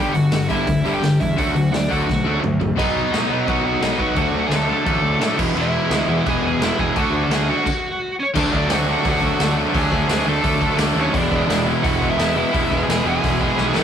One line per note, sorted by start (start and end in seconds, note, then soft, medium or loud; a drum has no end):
0.00 0.13 G1 medium
0.00 0.14 G2 medium
0.00 0.14 D3 loud
0.00 0.14 G3 loud
0.00 0.15 G4 medium
0.00 0.13 G5 medium
0.13 0.30 G1 loud
0.13 0.31 G2 medium
0.13 0.31 D3 medium
0.13 0.48 F#4 medium
0.13 0.48 F#5 medium
0.13 open hi-hat medium
0.32 0.47 G1 medium
0.32 0.49 G2 medium
0.32 0.49 D3 medium
0.32 snare loud
0.32 open hi-hat medium
0.49 0.65 G1 medium
0.49 0.66 G2 medium
0.49 0.66 D3 medium
0.49 0.67 G3 medium
0.49 0.91 E4 medium
0.49 0.90 E5 medium
0.49 kick medium
0.49 open hi-hat medium
0.67 0.82 D2 medium
0.67 0.83 G2 medium
0.67 0.84 D3 medium
0.67 kick loud
0.67 open hi-hat medium
0.83 0.99 G1 medium
0.83 1.01 G2 medium
0.83 1.01 D3 medium
0.83 1.02 G3 loud
0.83 open hi-hat medium
0.94 1.19 G4 medium
0.94 1.18 G5 medium
1.01 1.17 G1 medium
1.01 1.18 G2 medium
1.01 1.18 D3 medium
1.01 snare loud
1.01 open hi-hat medium
1.21 1.36 E2 medium
1.21 1.36 G2 medium
1.21 1.36 D3 medium
1.21 1.37 E4 medium
1.21 1.38 E5 medium
1.21 kick medium
1.21 open hi-hat medium
1.38 1.53 D2 medium
1.38 1.54 D3 medium
1.38 1.54 F#3 medium
1.38 1.55 A3 loud
1.38 1.54 D4 medium
1.38 1.71 F#4 medium
1.38 1.74 F#5 medium
1.38 kick loud
1.38 open hi-hat medium
1.55 1.70 D2 medium
1.55 1.71 D3 medium
1.55 1.71 F#3 medium
1.55 1.71 A3 medium
1.55 open hi-hat medium
1.71 1.87 D2 medium
1.71 1.88 D3 medium
1.71 1.88 F#3 medium
1.71 1.88 A3 medium
1.71 1.90 D4 medium
1.71 1.91 D5 medium
1.71 snare loud
1.71 open hi-hat medium
1.90 2.06 D2 medium
1.90 2.06 D3 medium
1.90 2.06 F#3 medium
1.90 2.07 A3 medium
1.90 2.06 D4 loud
1.90 2.39 F#4 medium
1.90 2.39 F#5 medium
1.90 kick medium
1.90 open hi-hat medium
2.08 2.23 B1 medium
2.08 2.24 D3 medium
2.08 2.24 F#3 medium
2.08 2.23 A3 medium
2.08 kick loud
2.08 snare medium
2.24 2.39 D2 medium
2.24 2.41 D3 medium
2.24 2.42 F#3 medium
2.24 2.42 A3 medium
2.24 2.41 D4 medium
2.24 high tom medium
2.42 2.57 D2 medium
2.42 2.58 D3 medium
2.42 2.59 F#3 medium
2.42 2.58 A3 medium
2.42 mid tom medium
2.60 2.75 A#1 medium
2.60 2.75 D3 medium
2.60 2.76 F#3 medium
2.60 2.75 A3 medium
2.60 floor tom medium
2.77 3.00 B1 loud
2.77 3.11 B2 medium
2.77 3.12 F#3 medium
2.77 3.12 B3 medium
2.77 3.12 D#4 medium
2.77 3.44 D#4 medium
2.77 3.50 D#5 medium
2.77 kick loud
2.77 crash loud
2.77 crash medium
3.13 3.24 A2 medium
3.13 3.30 B2 medium
3.13 3.30 F#3 medium
3.13 3.31 B3 medium
3.13 3.31 D#4 medium
3.13 snare loud
3.13 crash medium
3.30 3.41 B2 medium
3.30 3.46 B2 medium
3.30 3.47 F#3 medium
3.30 3.48 B3 medium
3.30 3.47 D#4 medium
3.47 3.59 B1 medium
3.47 3.80 B2 medium
3.47 3.81 F#3 loud
3.47 3.81 B3 medium
3.47 3.81 D#4 loud
3.47 3.64 F#4 medium
3.47 3.65 F#5 loud
3.47 kick loud
3.47 crash medium
3.63 3.74 B1 medium
3.63 3.81 F#4 medium
3.63 3.83 F#5 loud
3.81 3.92 B1 medium
3.81 3.98 B2 medium
3.81 3.98 F#3 medium
3.81 3.98 B3 loud
3.81 3.99 D#4 loud
3.81 3.98 D#4 medium
3.81 4.01 D#5 loud
3.81 snare loud
3.81 crash medium
3.99 4.10 B1 medium
3.99 4.15 B2 medium
3.99 4.15 F#3 medium
3.99 4.16 B3 medium
3.99 4.16 D#4 medium
3.99 4.15 F#4 medium
3.99 4.18 F#5 loud
3.99 kick medium
4.16 4.28 D2 loud
4.16 4.51 D3 medium
4.16 4.51 F#3 loud
4.16 4.51 A3 loud
4.16 4.51 D4 loud
4.16 4.42 F#4 medium
4.16 kick loud
4.16 crash medium
4.22 4.46 F#5 loud
4.31 4.43 D2 loud
4.46 4.71 D2 medium
4.46 4.53 G#4 medium
4.46 4.54 G#5 loud
4.51 4.67 D3 medium
4.51 4.68 F#3 medium
4.51 4.68 A3 medium
4.51 4.68 D4 medium
4.51 snare loud
4.51 crash medium
4.55 4.70 A4 medium
4.55 4.72 A5 loud
4.68 4.84 D3 medium
4.68 4.85 F#3 medium
4.68 4.85 A3 medium
4.68 4.86 D4 medium
4.68 5.36 A4 medium
4.73 5.37 A5 loud
4.86 4.97 A1 medium
4.86 5.19 D3 medium
4.86 5.20 F#3 loud
4.86 5.19 A3 medium
4.86 5.20 D4 loud
4.86 kick loud
4.86 crash medium
5.02 5.14 D2 medium
5.19 5.31 A2 medium
5.19 5.36 D3 medium
5.19 5.37 F#3 medium
5.19 5.37 A3 medium
5.19 5.37 D4 medium
5.19 snare loud
5.19 crash medium
5.37 5.50 E1 medium
5.37 5.53 E2 loud
5.37 5.54 B2 loud
5.37 5.54 E3 medium
5.37 5.55 G#3 loud
5.37 5.56 B3 loud
5.37 5.56 E4 loud
5.37 kick loud
5.37 crash loud
5.54 5.77 E1 loud
5.54 5.90 E2 loud
5.54 5.90 B2 loud
5.54 5.89 E3 loud
5.54 5.89 G#3 loud
5.54 5.89 B3 medium
5.54 5.90 E4 loud
5.54 6.23 E4 medium
5.54 crash medium
5.61 6.30 E5 medium
5.90 6.01 D2 loud
5.90 6.07 E2 medium
5.90 6.07 B2 medium
5.90 6.06 E3 medium
5.90 6.07 G#3 medium
5.90 6.08 B3 medium
5.90 6.08 E4 medium
5.90 snare loud
5.90 crash medium
6.07 6.25 E2 medium
6.07 6.19 E2 medium
6.07 6.25 B2 medium
6.07 6.24 E3 medium
6.07 6.26 G#3 medium
6.07 6.25 B3 medium
6.07 6.26 E4 loud
6.26 6.37 E1 loud
6.26 6.59 E2 medium
6.26 6.60 B2 loud
6.26 6.60 E3 loud
6.26 6.60 G#3 medium
6.26 6.61 B3 loud
6.26 6.61 E4 medium
6.26 6.42 G#4 medium
6.26 6.45 G#5 loud
6.26 kick loud
6.26 crash medium
6.42 6.54 E1 medium
6.42 6.60 G#4 medium
6.46 6.63 G#5 medium
6.59 6.71 E1 medium
6.59 6.78 E2 medium
6.59 6.78 B2 medium
6.59 6.77 E3 medium
6.59 6.77 G#3 medium
6.59 6.78 B3 medium
6.59 6.78 E4 medium
6.59 snare loud
6.59 crash medium
6.64 6.78 E5 medium
6.78 6.90 E1 medium
6.78 6.95 E2 medium
6.78 6.95 B2 medium
6.78 6.95 E3 medium
6.78 6.95 G#3 medium
6.78 6.95 B3 medium
6.78 6.95 E4 loud
6.78 6.95 G#4 medium
6.78 7.00 G#5 medium
6.78 kick medium
6.96 7.08 D2 loud
6.96 7.30 D3 loud
6.96 7.30 A3 loud
6.96 7.30 D4 loud
6.96 7.32 F#4 loud
6.96 7.22 F#4 medium
6.96 7.25 F#5 loud
6.96 kick loud
6.96 crash medium
7.11 7.22 D2 medium
7.23 7.31 A4 medium
7.23 7.32 A5 medium
7.29 7.51 D2 medium
7.29 7.47 D3 medium
7.29 7.48 A3 medium
7.29 7.48 D4 medium
7.29 7.47 G#4 medium
7.29 7.49 G#5 medium
7.29 snare loud
7.29 crash medium
7.33 7.48 F#4 medium
7.49 7.65 D3 medium
7.49 7.65 A3 medium
7.49 7.65 D4 medium
7.49 8.14 F#4 medium
7.49 7.65 F#4 medium
7.49 8.15 F#5 medium
7.66 kick loud
7.66 crash loud
8.20 8.25 C#4 medium
8.20 8.28 C#5 medium
8.35 8.48 D2 loud
8.35 8.52 D3 medium
8.35 8.53 F#3 medium
8.35 8.54 A3 loud
8.35 8.51 D4 medium
8.35 8.54 D4 loud
8.35 8.55 D5 medium
8.35 kick loud
8.35 crash loud
8.53 8.65 D2 loud
8.53 8.70 D3 medium
8.53 8.71 F#3 medium
8.53 8.71 A3 loud
8.53 8.72 D4 medium
8.53 8.70 D4 medium
8.53 8.72 D5 medium
8.53 kick medium
8.70 8.94 D2 loud
8.70 8.89 D3 medium
8.70 8.89 F#3 medium
8.70 8.89 A3 loud
8.70 8.90 D4 medium
8.70 9.03 F#4 medium
8.70 snare loud
8.70 open hi-hat medium
8.74 9.08 F#5 loud
8.89 9.03 D3 medium
8.89 9.03 F#3 medium
8.89 9.04 A3 medium
8.89 9.04 D4 loud
9.04 9.30 D2 loud
9.04 9.21 D3 medium
9.04 9.21 F#3 medium
9.04 9.22 A3 medium
9.04 9.22 D4 loud
9.04 kick loud
9.04 open hi-hat medium
9.09 9.55 F#4 medium
9.09 9.57 F#5 loud
9.22 9.38 D3 medium
9.22 9.39 F#3 medium
9.22 9.39 A3 medium
9.22 9.39 D4 medium
9.22 kick medium
9.39 9.64 D2 medium
9.39 9.57 D3 medium
9.39 9.57 F#3 medium
9.39 9.57 A3 medium
9.39 9.57 D4 medium
9.39 snare loud
9.39 open hi-hat medium
9.58 9.72 D3 medium
9.58 9.73 F#3 medium
9.58 9.73 A3 medium
9.58 9.73 D4 medium
9.74 9.86 D2 loud
9.74 9.89 D3 loud
9.74 9.90 F#3 loud
9.74 9.91 A3 loud
9.74 9.91 D4 loud
9.74 10.24 G#4 medium
9.74 10.29 G#5 loud
9.74 kick loud
9.74 open hi-hat medium
9.91 10.04 D2 loud
9.91 10.07 D3 medium
9.91 10.08 F#3 loud
9.91 10.07 A3 loud
9.91 10.08 D4 loud
9.91 kick medium
10.08 10.21 D2 loud
10.08 10.25 D3 medium
10.08 10.25 F#3 medium
10.08 10.26 A3 medium
10.08 10.26 D4 medium
10.08 snare loud
10.08 open hi-hat medium
10.25 10.38 D2 loud
10.25 10.42 D3 medium
10.25 10.42 F#3 medium
10.25 10.42 A3 loud
10.25 10.43 D4 loud
10.25 10.76 A4 medium
10.25 10.77 A5 loud
10.43 10.68 D2 loud
10.43 10.59 D3 loud
10.43 10.60 F#3 medium
10.43 10.60 A3 loud
10.43 10.60 D4 loud
10.43 kick loud
10.43 open hi-hat medium
10.61 10.77 D3 medium
10.61 10.77 F#3 medium
10.61 10.78 A3 medium
10.61 10.78 D4 medium
10.61 kick medium
10.78 10.90 D2 loud
10.78 10.94 D3 medium
10.78 10.93 F#3 medium
10.78 10.94 A3 loud
10.78 10.95 D4 loud
10.78 snare loud
10.78 open hi-hat medium
10.95 11.08 D#2 medium
10.95 11.12 D3 medium
10.95 11.12 F#3 medium
10.95 11.12 A3 loud
10.95 11.13 D4 loud
11.00 11.14 C#4 medium
11.00 11.16 C#5 loud
11.13 11.26 E1 loud
11.13 11.30 E2 loud
11.13 11.29 B2 loud
11.13 11.30 E3 medium
11.13 11.31 G#3 loud
11.13 11.31 B3 loud
11.13 11.32 D4 medium
11.13 11.32 E4 loud
11.13 kick loud
11.13 open hi-hat medium
11.18 11.33 D5 loud
11.30 11.44 E1 loud
11.30 11.47 E2 medium
11.30 11.47 B2 medium
11.30 11.48 E3 medium
11.30 11.48 G#3 medium
11.30 11.48 B3 medium
11.30 11.48 E4 medium
11.30 kick medium
11.35 11.65 D4 medium
11.35 11.65 D5 medium
11.48 11.73 E1 loud
11.48 11.64 E2 medium
11.48 11.64 B2 loud
11.48 11.65 E3 medium
11.48 11.64 G#3 medium
11.48 11.64 B3 medium
11.48 11.66 E4 medium
11.48 snare loud
11.48 open hi-hat medium
11.65 11.82 E2 medium
11.65 11.82 B2 medium
11.65 11.82 E3 medium
11.65 11.82 G#3 medium
11.65 11.82 B3 medium
11.65 11.84 E4 medium
11.83 12.08 E1 loud
11.83 11.99 E2 loud
11.83 12.00 B2 loud
11.83 12.00 E3 loud
11.83 12.00 G#3 medium
11.83 12.00 B3 loud
11.83 12.01 E4 loud
11.83 12.07 F#4 medium
11.83 12.08 F#5 loud
11.83 kick loud
11.83 open hi-hat medium
12.00 12.17 E2 medium
12.00 12.17 B2 loud
12.00 12.17 E3 medium
12.00 12.17 G#3 medium
12.00 12.17 B3 medium
12.00 12.18 E4 medium
12.00 kick medium
12.10 12.34 E4 medium
12.10 12.35 E5 loud
12.17 12.42 E1 loud
12.17 12.35 E2 medium
12.17 12.35 B2 medium
12.17 12.34 E3 medium
12.17 12.34 G#3 medium
12.17 12.35 B3 medium
12.17 12.35 E4 medium
12.17 snare loud
12.17 open hi-hat medium
12.35 12.51 E2 medium
12.35 12.51 B2 medium
12.35 12.53 E3 medium
12.35 12.52 G#3 medium
12.35 12.52 B3 medium
12.35 12.54 E4 loud
12.35 12.77 E4 medium
12.35 12.81 E5 loud
12.52 12.66 E1 loud
12.52 12.69 E2 loud
12.52 12.69 B2 loud
12.52 12.71 E3 loud
12.52 12.70 G#3 loud
12.52 12.71 B3 medium
12.52 12.72 E4 loud
12.52 kick loud
12.52 open hi-hat medium
12.70 12.83 E1 medium
12.70 12.86 E2 medium
12.70 12.87 B2 medium
12.70 12.88 E3 medium
12.70 12.88 G#3 loud
12.70 12.89 B3 medium
12.70 12.90 E4 loud
12.70 kick medium
12.83 13.05 G#4 medium
12.83 13.08 G#5 loud
12.87 12.99 E1 medium
12.87 13.03 E2 medium
12.87 13.04 B2 medium
12.87 13.05 E3 medium
12.87 13.05 G#3 medium
12.87 13.06 B3 medium
12.87 13.06 E4 loud
12.87 snare loud
12.87 open hi-hat medium
13.04 13.17 E1 medium
13.04 13.20 E2 medium
13.04 13.21 B2 medium
13.04 13.22 E3 medium
13.04 13.22 G#3 medium
13.04 13.23 B3 medium
13.04 13.24 E4 loud
13.08 13.72 G#4 medium
13.08 13.79 G#5 loud
13.21 13.47 E1 medium
13.21 13.38 E2 loud
13.21 13.39 B2 medium
13.21 13.39 E3 medium
13.21 13.39 G#3 loud
13.21 13.39 B3 loud
13.21 13.41 E4 loud
13.21 kick loud
13.21 open hi-hat medium
13.39 13.54 E2 medium
13.39 13.55 B2 medium
13.39 13.55 E3 medium
13.39 13.55 G#3 medium
13.39 13.56 B3 medium
13.39 13.57 E4 medium
13.39 kick medium
13.56 13.70 B1 loud
13.56 13.73 E2 medium
13.56 13.73 B2 medium
13.56 13.74 E3 medium
13.56 13.73 G#3 medium
13.56 13.73 B3 medium
13.56 13.75 E4 loud
13.56 snare medium
13.74 13.84 A1 medium
13.74 13.84 A2 loud
13.74 13.84 E3 loud
13.74 13.84 A3 loud
13.74 13.84 B3 medium
13.74 13.84 C#4 loud
13.74 13.84 E4 loud
13.74 13.84 B4 medium
13.74 snare loud